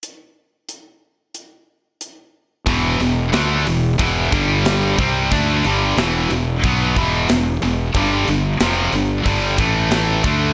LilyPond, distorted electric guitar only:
\new Staff \with { instrumentName = "Distorted electric guitar" } { \clef bass \time 4/4 \key e \phrygian \tempo 4 = 91 r1 | <e, b, e>8 <e, b,>8 <d a d'>8 <e, b,>8 <e, b, e>8 <g, d g>4 <c g c'>8 | <d a d'>8 <g, d g>8 <e, b, e>8 <e, b,>8 <b, fis b>8 <e, b, e>8 <e, b,>8 <e, b,>8 | <g, d g>8 <g, d>8 <f, c f>8 <g, d>8 <g, d g>8 <a, e a>4 <d a d'>8 | }